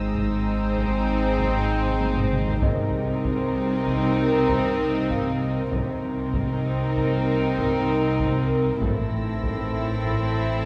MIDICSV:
0, 0, Header, 1, 11, 480
1, 0, Start_track
1, 0, Tempo, 618557
1, 2042, Time_signature, 5, 2, 24, 8
1, 8267, End_track
2, 0, Start_track
2, 0, Title_t, "Violin section"
2, 0, Program_c, 0, 48
2, 0, Note_on_c, 0, 87, 38
2, 0, Note_on_c, 0, 88, 37
2, 0, Note_on_c, 0, 94, 40
2, 814, Note_off_c, 0, 94, 0
2, 1774, Note_off_c, 0, 87, 0
2, 1774, Note_off_c, 0, 88, 0
2, 6851, Note_on_c, 0, 88, 42
2, 6852, Note_on_c, 0, 94, 39
2, 8267, Note_off_c, 0, 88, 0
2, 8267, Note_off_c, 0, 94, 0
2, 8267, End_track
3, 0, Start_track
3, 0, Title_t, "Celesta"
3, 0, Program_c, 1, 8
3, 0, Control_c, 1, 64, 127
3, 2040, Note_on_c, 1, 75, 52
3, 2056, Control_c, 1, 64, 0
3, 2168, Control_c, 1, 64, 127
3, 3450, Note_off_c, 1, 75, 0
3, 3962, Note_on_c, 1, 77, 45
3, 5371, Note_off_c, 1, 77, 0
3, 6856, Control_c, 1, 64, 0
3, 6982, Control_c, 1, 64, 127
3, 7803, Note_on_c, 1, 69, 28
3, 7804, Note_on_c, 1, 93, 40
3, 8267, Note_off_c, 1, 69, 0
3, 8267, Note_off_c, 1, 93, 0
3, 8267, End_track
4, 0, Start_track
4, 0, Title_t, "Violin section"
4, 0, Program_c, 2, 48
4, 0, Note_on_c, 2, 72, 56
4, 2011, Note_off_c, 2, 72, 0
4, 2038, Note_on_c, 2, 70, 61
4, 4409, Note_off_c, 2, 70, 0
4, 4445, Note_on_c, 2, 70, 59
4, 6813, Note_off_c, 2, 70, 0
4, 6844, Note_on_c, 2, 69, 50
4, 8267, Note_off_c, 2, 69, 0
4, 8267, End_track
5, 0, Start_track
5, 0, Title_t, "Ambient pad"
5, 0, Program_c, 3, 92
5, 0, Note_on_c, 3, 63, 50
5, 0, Note_on_c, 3, 68, 52
5, 0, Note_on_c, 3, 72, 50
5, 2007, Note_off_c, 3, 68, 0
5, 2007, Note_off_c, 3, 72, 0
5, 2009, Note_off_c, 3, 63, 0
5, 2041, Note_on_c, 3, 70, 56
5, 2043, Note_on_c, 3, 72, 51
5, 2046, Note_on_c, 3, 63, 58
5, 4412, Note_off_c, 3, 72, 0
5, 4413, Note_off_c, 3, 63, 0
5, 4441, Note_off_c, 3, 70, 0
5, 4448, Note_on_c, 3, 72, 53
5, 4450, Note_on_c, 3, 63, 51
5, 4450, Note_on_c, 3, 70, 48
5, 6814, Note_off_c, 3, 72, 0
5, 6815, Note_off_c, 3, 63, 0
5, 6815, Note_off_c, 3, 70, 0
5, 6840, Note_on_c, 3, 64, 49
5, 6840, Note_on_c, 3, 72, 53
5, 6842, Note_on_c, 3, 69, 50
5, 8267, Note_off_c, 3, 64, 0
5, 8267, Note_off_c, 3, 69, 0
5, 8267, Note_off_c, 3, 72, 0
5, 8267, End_track
6, 0, Start_track
6, 0, Title_t, "Violin section"
6, 0, Program_c, 4, 48
6, 0, Note_on_c, 4, 63, 62
6, 2007, Note_off_c, 4, 63, 0
6, 2036, Note_on_c, 4, 63, 71
6, 4408, Note_off_c, 4, 63, 0
6, 4437, Note_on_c, 4, 63, 61
6, 6809, Note_off_c, 4, 63, 0
6, 6835, Note_on_c, 4, 64, 59
6, 8267, Note_off_c, 4, 64, 0
6, 8267, End_track
7, 0, Start_track
7, 0, Title_t, "Viola section"
7, 0, Program_c, 5, 48
7, 0, Note_on_c, 5, 60, 62
7, 2010, Note_off_c, 5, 60, 0
7, 2040, Note_on_c, 5, 60, 69
7, 4410, Note_off_c, 5, 60, 0
7, 4437, Note_on_c, 5, 60, 59
7, 6808, Note_off_c, 5, 60, 0
7, 6847, Note_on_c, 5, 60, 58
7, 8267, Note_off_c, 5, 60, 0
7, 8267, End_track
8, 0, Start_track
8, 0, Title_t, "Cello section"
8, 0, Program_c, 6, 48
8, 0, Note_on_c, 6, 44, 63
8, 2009, Note_off_c, 6, 44, 0
8, 2045, Note_on_c, 6, 48, 65
8, 4434, Note_off_c, 6, 48, 0
8, 4443, Note_on_c, 6, 48, 58
8, 6812, Note_off_c, 6, 48, 0
8, 6845, Note_on_c, 6, 45, 57
8, 8267, Note_off_c, 6, 45, 0
8, 8267, End_track
9, 0, Start_track
9, 0, Title_t, "Double bass section"
9, 0, Program_c, 7, 48
9, 0, Note_on_c, 7, 32, 64
9, 2013, Note_off_c, 7, 32, 0
9, 2040, Note_on_c, 7, 36, 64
9, 4435, Note_off_c, 7, 36, 0
9, 4444, Note_on_c, 7, 36, 58
9, 6812, Note_off_c, 7, 36, 0
9, 6846, Note_on_c, 7, 33, 56
9, 8267, Note_off_c, 7, 33, 0
9, 8267, End_track
10, 0, Start_track
10, 0, Title_t, "Sub bass"
10, 0, Program_c, 8, 38
10, 0, Note_on_c, 8, 32, 61
10, 2043, Note_on_c, 8, 36, 61
10, 2054, Note_off_c, 8, 32, 0
10, 4434, Note_off_c, 8, 36, 0
10, 4439, Note_on_c, 8, 36, 60
10, 6841, Note_on_c, 8, 33, 62
10, 6853, Note_off_c, 8, 36, 0
10, 8267, Note_off_c, 8, 33, 0
10, 8267, End_track
11, 0, Start_track
11, 0, Title_t, "Taiko and cinematic ensemble drums"
11, 119, Note_on_c, 9, 41, 60
11, 196, Note_off_c, 9, 41, 0
11, 601, Note_on_c, 9, 41, 62
11, 678, Note_off_c, 9, 41, 0
11, 1077, Note_on_c, 9, 41, 69
11, 1154, Note_off_c, 9, 41, 0
11, 1437, Note_on_c, 9, 45, 63
11, 1515, Note_off_c, 9, 45, 0
11, 1558, Note_on_c, 9, 48, 74
11, 1636, Note_off_c, 9, 48, 0
11, 1680, Note_on_c, 9, 45, 81
11, 1758, Note_off_c, 9, 45, 0
11, 1801, Note_on_c, 9, 47, 77
11, 1879, Note_off_c, 9, 47, 0
11, 1917, Note_on_c, 9, 43, 86
11, 1994, Note_off_c, 9, 43, 0
11, 2036, Note_on_c, 9, 41, 76
11, 2114, Note_off_c, 9, 41, 0
11, 2522, Note_on_c, 9, 41, 62
11, 2599, Note_off_c, 9, 41, 0
11, 3002, Note_on_c, 9, 41, 57
11, 3079, Note_off_c, 9, 41, 0
11, 3480, Note_on_c, 9, 41, 69
11, 3557, Note_off_c, 9, 41, 0
11, 3961, Note_on_c, 9, 41, 68
11, 4039, Note_off_c, 9, 41, 0
11, 4435, Note_on_c, 9, 41, 73
11, 4512, Note_off_c, 9, 41, 0
11, 4917, Note_on_c, 9, 41, 71
11, 4994, Note_off_c, 9, 41, 0
11, 5400, Note_on_c, 9, 41, 59
11, 5477, Note_off_c, 9, 41, 0
11, 5882, Note_on_c, 9, 41, 65
11, 5959, Note_off_c, 9, 41, 0
11, 6360, Note_on_c, 9, 41, 69
11, 6438, Note_off_c, 9, 41, 0
11, 6841, Note_on_c, 9, 41, 77
11, 6918, Note_off_c, 9, 41, 0
11, 7322, Note_on_c, 9, 41, 63
11, 7400, Note_off_c, 9, 41, 0
11, 7801, Note_on_c, 9, 41, 51
11, 7878, Note_off_c, 9, 41, 0
11, 8267, End_track
0, 0, End_of_file